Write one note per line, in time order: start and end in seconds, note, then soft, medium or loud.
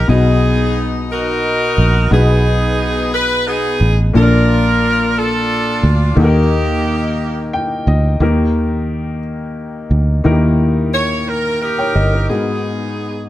0.00 0.10 D#3 medium
0.00 0.11 A#3 medium
0.00 0.09 D#4 medium
0.00 0.11 G4 medium
0.00 0.10 A#4 medium
0.08 1.74 B1 medium
0.08 1.06 B2 medium
0.08 2.07 B3 medium
0.08 1.07 B3 medium
0.08 2.08 D#4 medium
0.08 1.07 D#4 medium
0.08 2.08 F#4 medium
0.08 0.84 G#4 medium
0.08 2.08 D#5 medium
1.12 2.09 D#4 medium
1.12 2.09 F#4 medium
1.12 2.09 A#4 medium
1.78 2.09 A#1 medium
2.11 3.77 B1 loud
2.11 3.09 B2 medium
2.11 4.10 B3 medium
2.11 3.10 B3 medium
2.11 4.11 D#4 medium
2.11 3.10 D#4 medium
2.11 4.11 G#4 medium
2.11 3.14 G#4 medium
2.11 4.11 B4 medium
3.15 3.48 B4 medium
3.47 3.99 B3 medium
3.47 3.99 D#4 medium
3.47 3.99 G#4 medium
3.81 4.12 A1 medium
4.13 5.80 A#1 medium
4.13 5.12 A#2 medium
4.13 6.13 A#3 medium
4.13 6.14 D4 medium
4.13 5.13 D4 medium
4.13 6.14 F4 medium
4.13 5.13 F4 medium
4.13 4.22 A4 medium
4.13 5.17 A#4 medium
4.23 6.18 D5 medium
5.17 6.14 D4 medium
5.17 6.14 F4 medium
5.17 5.92 A4 medium
5.83 6.15 D2 medium
6.16 7.83 D#2 loud
6.16 7.15 D#3 medium
6.16 8.16 A#3 medium
6.16 7.50 A#3 medium
6.16 8.17 D#4 medium
6.16 7.50 D#4 medium
6.16 8.17 G4 medium
6.16 6.24 A4 medium
6.20 7.50 G4 medium
6.24 8.21 A#4 medium
7.53 7.85 G5 medium
7.87 8.18 D2 medium
7.87 8.19 D#5 medium
8.20 9.87 D#2 medium
8.20 9.19 D#3 medium
8.20 10.21 A#3 medium
8.20 10.21 D#4 medium
8.20 10.21 G4 medium
8.20 10.22 A#4 medium
9.91 10.22 D2 medium
10.24 11.92 D#2 medium
10.24 11.23 D#3 medium
10.24 12.25 A#3 medium
10.24 11.25 D#4 medium
10.24 10.32 E4 soft
10.24 11.26 A#4 medium
10.32 11.29 G4 medium
10.94 11.25 C#5 medium
11.29 11.61 A#4 medium
11.62 12.27 D#4 medium
11.62 12.27 G4 medium
11.62 12.26 A#4 medium
11.78 11.95 C#5 soft
11.78 11.95 G5 soft
11.95 12.27 G1 medium
11.95 12.12 A#4 soft
11.95 12.12 D#5 medium
12.13 12.28 D#4 soft
12.13 12.45 A#4 soft
12.29 13.28 G#2 soft
12.29 13.29 B3 soft
12.29 13.29 D#4 soft
12.29 13.29 F#4 soft
12.29 13.29 G#4 medium
12.29 13.29 G#4 soft